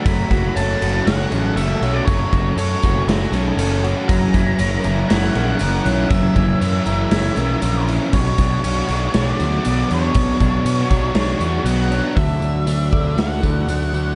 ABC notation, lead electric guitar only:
X:1
M:4/4
L:1/16
Q:1/4=119
K:F#phr
V:1 name="Lead electric guitar"
b4 a4 f4 e3 d | c4 c4 z8 | ^a6 a2 f2 f6 | e12- e2 z2 |
c8 d4 d2 c2- | c12 f4 | e8 f8 |]